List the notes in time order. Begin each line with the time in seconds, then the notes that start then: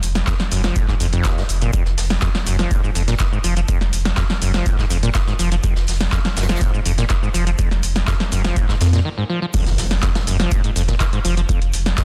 0.03 F1, open hi-hat, shaker
0.15 snare, closed hi-hat, shaker
0.27 F2, kick, snare, clap, shaker
0.40 F3, snare, shaker
0.51 F1 F#2, open hi-hat, shaker
0.64 F3, snare, closed hi-hat, shaker
0.76 G#2, kick, closed hi-hat, shaker
0.88 G#2, kick, snare, clap, shaker
1.00 F1 F2, open hi-hat, shaker
1.13 F2, closed hi-hat, shaker
1.24 D#2, kick, snare, clap, closed hi-hat, shaker
1.37 G#2, snare, shaker
1.49 F1, open hi-hat, shaker
1.62 A#2, closed hi-hat, shaker
1.73 F2, kick, closed hi-hat, shaker
1.86 F1, snare, shaker
1.97 F1, snare, open hi-hat, shaker
2.10 snare, closed hi-hat, shaker
2.22 F2, kick, snare, clap, shaker
2.35 F3, snare, shaker
2.46 F1 F#2, open hi-hat, shaker
2.59 F3, snare, closed hi-hat, shaker
2.71 G#2, kick, closed hi-hat, shaker
2.83 G#2, shaker
2.95 F1 F2, open hi-hat, shaker
3.08 A#2, snare, closed hi-hat, shaker
3.19 D#3, kick, snare, clap, closed hi-hat, shaker
3.20 shaker
3.32 G#2, shaker
3.44 F1 F3, open hi-hat, shaker
3.57 F3, closed hi-hat, shaker
3.68 F2, kick, closed hi-hat, shaker
3.81 F1, snare, shaker
3.93 F1, open hi-hat, shaker
4.05 snare, closed hi-hat, shaker
4.17 F2, kick, snare, clap, shaker
4.29 F3, snare, shaker
4.42 F1 F#2, open hi-hat, shaker
4.54 F3, snare, closed hi-hat, shaker
4.66 G#2, kick, closed hi-hat, shaker
4.78 G#2, kick, snare, clap, shaker
4.90 F1 F2, open hi-hat, shaker
5.03 A#2, closed hi-hat, shaker
5.14 D#3, kick, snare, clap, closed hi-hat, shaker
5.27 G#2, snare, shaker
5.39 F1 F3, open hi-hat, shaker
5.52 F3, closed hi-hat, shaker
5.64 F2, kick, closed hi-hat, shaker
5.76 F1, snare, shaker
5.87 F1, snare, open hi-hat, shaker
6.01 snare, closed hi-hat, shaker
6.12 F2, kick, snare, clap, shaker
6.24 F3, snare, shaker
6.36 F1 F#2, snare, open hi-hat, shaker
6.42 snare, shaker
6.49 F3, snare, closed hi-hat, shaker
6.56 snare, shaker
6.61 G#2, kick, closed hi-hat, shaker
6.74 G#2, shaker
6.85 F1 F2, open hi-hat, shaker
6.98 A#2, snare, closed hi-hat, shaker
7.09 D#3, kick, snare, clap, closed hi-hat, shaker
7.22 G#2, shaker
7.34 F1 F3, open hi-hat, shaker
7.47 F3, closed hi-hat, shaker
7.59 F2, kick, closed hi-hat, shaker
7.71 F1, snare, shaker
7.83 F1, open hi-hat, shaker
7.96 snare, closed hi-hat, shaker
8.07 F2, kick, snare, clap, shaker
8.19 F3, snare, shaker
8.32 F1 F#2, open hi-hat, shaker
8.44 F3, snare, closed hi-hat, shaker
8.56 G#2, kick, closed hi-hat, shaker
8.69 G#2, kick, snare, clap, shaker
8.81 F2, snare, open hi-hat, shaker
8.93 A#2, snare, closed hi-hat, shaker
9.05 D#3
9.18 G#2
9.30 F3
9.42 F3
9.54 F2, kick, closed hi-hat, crash, impact, shaker
9.66 F1, snare, closed hi-hat, shaker
9.78 F1, snare, open hi-hat, shaker
9.91 snare, closed hi-hat, shaker
10.02 F2, kick, snare, clap, closed hi-hat, shaker
10.15 F3, snare, closed hi-hat, shaker
10.27 F1 F#2, open hi-hat, shaker
10.40 F3, snare, closed hi-hat, shaker
10.51 G#2, kick, closed hi-hat, shaker
10.64 G#2, closed hi-hat, shaker
10.76 F1 F2, open hi-hat, shaker
10.88 A#2, kick, snare, closed hi-hat, shaker
11.00 D#3, kick, snare, clap, closed hi-hat, shaker
11.13 G#2, closed hi-hat, shaker
11.25 F1 F3, open hi-hat, shaker
11.37 F3, closed hi-hat, shaker
11.49 F2, kick, closed hi-hat, shaker
11.62 F1, closed hi-hat, shaker
11.73 F1, open hi-hat, shaker
11.74 shaker
11.86 snare, closed hi-hat, shaker
11.98 F2, kick, snare, clap, closed hi-hat, shaker